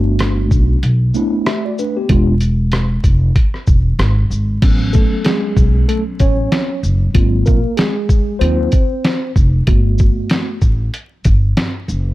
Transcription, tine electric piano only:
0.00 0.78 A3 medium
0.00 0.78 B3 medium
0.00 0.78 D4 medium
0.00 0.78 F#4 medium
1.14 2.04 A3 medium
1.14 1.47 B3 medium
1.14 1.47 D4 medium
1.14 1.47 E4 medium
1.46 1.64 G4 medium
1.46 1.64 E5 medium
1.65 1.78 F#4 soft
1.65 1.78 D5 medium
1.79 1.96 D4 medium
1.79 1.96 B4 medium
1.97 2.08 B3 soft
1.97 2.26 G4 medium
2.09 2.33 G#3 medium
2.09 2.33 B3 medium
2.09 2.33 D4 medium
2.09 2.34 F4 medium
4.62 7.11 F#3 medium
4.62 7.11 B3 medium
4.62 6.20 C#4 medium
4.93 5.24 A3 medium
4.93 5.26 A4 medium
5.25 5.85 G#3 medium
5.25 5.84 G#4 medium
5.89 6.03 A3 medium
5.89 6.03 A4 medium
6.20 6.80 C#4 medium
6.20 6.79 C#5 medium
7.14 7.58 F#3 medium
7.14 7.46 A#3 medium
7.14 7.58 C4 medium
7.14 7.59 F4 medium
7.46 7.76 A#3 medium
7.46 7.79 A#4 medium
7.77 8.38 G#3 medium
7.77 8.43 G#4 medium
8.39 8.69 F#3 soft
8.39 8.69 A#3 soft
8.39 9.32 C4 medium
8.39 8.69 F4 medium
8.39 9.31 C5 medium
9.67 10.58 A3 medium
9.67 10.58 B3 medium
9.67 10.58 F#4 medium

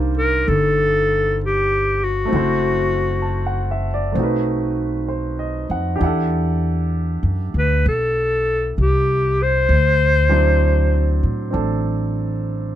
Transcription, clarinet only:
0.17 0.50 A#4 medium
0.48 1.39 A4 medium
1.44 2.05 G4 medium
2.04 3.86 F#4 medium
7.59 7.85 B4 medium
7.88 8.75 A4 medium
8.81 9.44 G4 medium
9.43 11.25 C5 medium

